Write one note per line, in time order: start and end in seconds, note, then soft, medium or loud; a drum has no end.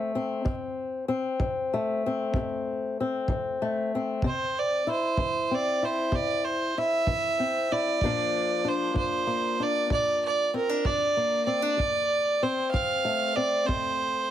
0.00 0.42 A3 medium
0.00 0.15 C4 medium
0.15 1.08 C4 medium
0.45 1.02 F2 medium
0.45 kick medium
1.08 2.06 C4 medium
1.40 1.96 F3 medium
1.40 kick medium
1.74 3.61 A3 medium
2.06 2.99 C4 medium
2.34 2.92 F2 medium
2.34 kick medium
3.00 3.93 C4 medium
3.28 3.86 F3 medium
3.28 kick medium
3.62 4.20 A3 medium
3.95 4.87 C4 medium
4.22 4.80 C3 medium
4.22 kick medium
4.27 4.60 C5 medium
4.59 4.88 D5 medium
4.87 5.81 E4 medium
4.91 5.56 C5 medium
5.17 5.75 E3 medium
5.17 kick medium
5.51 7.38 C4 medium
5.51 5.86 D5 medium
5.82 6.76 E4 medium
5.82 6.16 C5 medium
6.12 6.69 C3 medium
6.12 6.46 D5 medium
6.12 kick medium
6.44 6.80 C5 medium
6.78 7.71 E4 medium
6.78 7.73 E5 loud
7.07 7.64 E3 medium
7.07 kick medium
7.40 7.98 C4 medium
7.72 7.99 E4 medium
7.72 8.70 D5 loud
8.01 8.59 A#2 medium
8.01 8.94 F3 medium
8.01 9.26 A#3 medium
8.01 8.63 D4 medium
8.01 kick medium
8.06 14.31 F4 medium
8.64 9.59 D4 medium
8.64 8.96 C5 medium
8.94 9.52 F3 medium
8.94 9.64 C5 loud
8.94 kick medium
9.27 11.16 A#3 medium
9.60 10.53 D4 medium
9.60 9.92 D5 loud
9.90 10.47 A#2 medium
9.90 10.21 D5 loud
9.90 kick medium
10.26 10.53 D5 medium
10.54 10.69 C4 medium
10.54 10.87 A#4 loud
10.69 11.46 D4 medium
10.85 11.42 F3 medium
10.85 11.45 D5 loud
10.85 kick medium
11.17 11.76 A#3 medium
11.46 11.62 C4 medium
11.46 12.44 D5 loud
11.62 11.79 D4 soft
11.77 12.35 F2 medium
11.77 kick medium
12.43 13.36 C4 medium
12.43 12.71 C5 medium
12.72 13.31 F3 medium
12.72 13.38 F5 loud
12.72 kick medium
13.05 14.31 A3 medium
13.36 14.31 C4 medium
13.36 13.68 D5 loud
13.67 14.26 F2 medium
13.67 14.31 C5 loud
13.67 kick medium